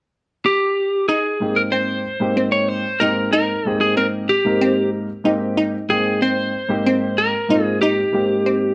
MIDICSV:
0, 0, Header, 1, 4, 480
1, 0, Start_track
1, 0, Key_signature, -4, "major"
1, 0, Tempo, 640342
1, 816, Time_signature, 7, 3, 24, 8
1, 6554, End_track
2, 0, Start_track
2, 0, Title_t, "Lead electric guitar"
2, 0, Program_c, 0, 29
2, 342, Note_on_c, 0, 67, 66
2, 810, Note_off_c, 0, 67, 0
2, 813, Note_on_c, 0, 68, 71
2, 1172, Note_on_c, 0, 70, 70
2, 1186, Note_off_c, 0, 68, 0
2, 1209, Note_off_c, 0, 70, 0
2, 1289, Note_on_c, 0, 72, 78
2, 1886, Note_off_c, 0, 72, 0
2, 1889, Note_on_c, 0, 73, 75
2, 2012, Note_off_c, 0, 73, 0
2, 2012, Note_on_c, 0, 72, 86
2, 2249, Note_on_c, 0, 70, 76
2, 2263, Note_off_c, 0, 72, 0
2, 2484, Note_off_c, 0, 70, 0
2, 2493, Note_on_c, 0, 70, 78
2, 2830, Note_off_c, 0, 70, 0
2, 2854, Note_on_c, 0, 68, 69
2, 2975, Note_off_c, 0, 68, 0
2, 2978, Note_on_c, 0, 70, 72
2, 3043, Note_off_c, 0, 70, 0
2, 3218, Note_on_c, 0, 67, 65
2, 3669, Note_off_c, 0, 67, 0
2, 4422, Note_on_c, 0, 68, 75
2, 4644, Note_off_c, 0, 68, 0
2, 4664, Note_on_c, 0, 72, 84
2, 5383, Note_on_c, 0, 70, 75
2, 5403, Note_off_c, 0, 72, 0
2, 5720, Note_off_c, 0, 70, 0
2, 5720, Note_on_c, 0, 68, 75
2, 5831, Note_off_c, 0, 68, 0
2, 5858, Note_on_c, 0, 67, 73
2, 6554, Note_off_c, 0, 67, 0
2, 6554, End_track
3, 0, Start_track
3, 0, Title_t, "Synth arpeggio sound"
3, 0, Program_c, 1, 84
3, 816, Note_on_c, 1, 63, 82
3, 1086, Note_off_c, 1, 63, 0
3, 1295, Note_on_c, 1, 60, 69
3, 1565, Note_off_c, 1, 60, 0
3, 1775, Note_on_c, 1, 60, 77
3, 2046, Note_off_c, 1, 60, 0
3, 2258, Note_on_c, 1, 63, 75
3, 2393, Note_off_c, 1, 63, 0
3, 2496, Note_on_c, 1, 63, 84
3, 2766, Note_off_c, 1, 63, 0
3, 2976, Note_on_c, 1, 60, 71
3, 3246, Note_off_c, 1, 60, 0
3, 3458, Note_on_c, 1, 60, 75
3, 3728, Note_off_c, 1, 60, 0
3, 3937, Note_on_c, 1, 63, 78
3, 4072, Note_off_c, 1, 63, 0
3, 4178, Note_on_c, 1, 63, 86
3, 4448, Note_off_c, 1, 63, 0
3, 4663, Note_on_c, 1, 60, 73
3, 4931, Note_off_c, 1, 60, 0
3, 5146, Note_on_c, 1, 60, 77
3, 5413, Note_off_c, 1, 60, 0
3, 5624, Note_on_c, 1, 63, 76
3, 5758, Note_off_c, 1, 63, 0
3, 5866, Note_on_c, 1, 63, 81
3, 6133, Note_off_c, 1, 63, 0
3, 6343, Note_on_c, 1, 60, 75
3, 6554, Note_off_c, 1, 60, 0
3, 6554, End_track
4, 0, Start_track
4, 0, Title_t, "Grand piano"
4, 0, Program_c, 2, 0
4, 1050, Note_on_c, 2, 44, 60
4, 1054, Note_on_c, 2, 58, 52
4, 1056, Note_on_c, 2, 60, 51
4, 1060, Note_on_c, 2, 63, 50
4, 1065, Note_on_c, 2, 67, 62
4, 1510, Note_off_c, 2, 44, 0
4, 1512, Note_off_c, 2, 58, 0
4, 1513, Note_off_c, 2, 60, 0
4, 1515, Note_off_c, 2, 63, 0
4, 1518, Note_off_c, 2, 67, 0
4, 1649, Note_on_c, 2, 44, 71
4, 1652, Note_on_c, 2, 58, 63
4, 1657, Note_on_c, 2, 60, 65
4, 1658, Note_on_c, 2, 63, 62
4, 1662, Note_on_c, 2, 67, 77
4, 2110, Note_off_c, 2, 44, 0
4, 2111, Note_off_c, 2, 58, 0
4, 2114, Note_off_c, 2, 60, 0
4, 2114, Note_off_c, 2, 63, 0
4, 2116, Note_off_c, 2, 67, 0
4, 2254, Note_on_c, 2, 44, 60
4, 2257, Note_on_c, 2, 58, 55
4, 2261, Note_on_c, 2, 60, 61
4, 2264, Note_on_c, 2, 63, 55
4, 2267, Note_on_c, 2, 67, 70
4, 2622, Note_off_c, 2, 44, 0
4, 2623, Note_off_c, 2, 58, 0
4, 2625, Note_off_c, 2, 60, 0
4, 2626, Note_off_c, 2, 63, 0
4, 2628, Note_off_c, 2, 67, 0
4, 2737, Note_on_c, 2, 44, 62
4, 2741, Note_on_c, 2, 58, 60
4, 2746, Note_on_c, 2, 60, 60
4, 2749, Note_on_c, 2, 63, 58
4, 2751, Note_on_c, 2, 67, 71
4, 3194, Note_off_c, 2, 44, 0
4, 3196, Note_off_c, 2, 58, 0
4, 3199, Note_off_c, 2, 60, 0
4, 3200, Note_off_c, 2, 63, 0
4, 3201, Note_off_c, 2, 67, 0
4, 3333, Note_on_c, 2, 44, 67
4, 3337, Note_on_c, 2, 58, 59
4, 3341, Note_on_c, 2, 60, 59
4, 3343, Note_on_c, 2, 63, 58
4, 3346, Note_on_c, 2, 70, 73
4, 3793, Note_off_c, 2, 44, 0
4, 3795, Note_off_c, 2, 58, 0
4, 3797, Note_off_c, 2, 60, 0
4, 3797, Note_off_c, 2, 63, 0
4, 3799, Note_off_c, 2, 70, 0
4, 3929, Note_on_c, 2, 44, 76
4, 3932, Note_on_c, 2, 58, 70
4, 3935, Note_on_c, 2, 60, 71
4, 3940, Note_on_c, 2, 63, 69
4, 3941, Note_on_c, 2, 67, 83
4, 4299, Note_off_c, 2, 44, 0
4, 4301, Note_off_c, 2, 58, 0
4, 4302, Note_off_c, 2, 60, 0
4, 4305, Note_off_c, 2, 63, 0
4, 4305, Note_off_c, 2, 67, 0
4, 4413, Note_on_c, 2, 44, 58
4, 4415, Note_on_c, 2, 58, 58
4, 4420, Note_on_c, 2, 60, 56
4, 4422, Note_on_c, 2, 63, 55
4, 4427, Note_on_c, 2, 79, 66
4, 4872, Note_off_c, 2, 44, 0
4, 4874, Note_off_c, 2, 58, 0
4, 4876, Note_off_c, 2, 60, 0
4, 4877, Note_off_c, 2, 63, 0
4, 4879, Note_off_c, 2, 79, 0
4, 5012, Note_on_c, 2, 44, 72
4, 5015, Note_on_c, 2, 58, 64
4, 5018, Note_on_c, 2, 60, 69
4, 5020, Note_on_c, 2, 63, 64
4, 5024, Note_on_c, 2, 67, 82
4, 5472, Note_off_c, 2, 44, 0
4, 5473, Note_off_c, 2, 58, 0
4, 5475, Note_off_c, 2, 60, 0
4, 5476, Note_off_c, 2, 63, 0
4, 5478, Note_off_c, 2, 67, 0
4, 5612, Note_on_c, 2, 44, 67
4, 5615, Note_on_c, 2, 58, 57
4, 5619, Note_on_c, 2, 60, 61
4, 5622, Note_on_c, 2, 63, 60
4, 5625, Note_on_c, 2, 65, 76
4, 5980, Note_off_c, 2, 44, 0
4, 5982, Note_off_c, 2, 58, 0
4, 5984, Note_off_c, 2, 60, 0
4, 5985, Note_off_c, 2, 63, 0
4, 5987, Note_off_c, 2, 65, 0
4, 6091, Note_on_c, 2, 44, 66
4, 6096, Note_on_c, 2, 58, 61
4, 6100, Note_on_c, 2, 60, 56
4, 6102, Note_on_c, 2, 63, 58
4, 6106, Note_on_c, 2, 67, 73
4, 6551, Note_off_c, 2, 44, 0
4, 6553, Note_off_c, 2, 58, 0
4, 6554, Note_off_c, 2, 60, 0
4, 6554, Note_off_c, 2, 63, 0
4, 6554, Note_off_c, 2, 67, 0
4, 6554, End_track
0, 0, End_of_file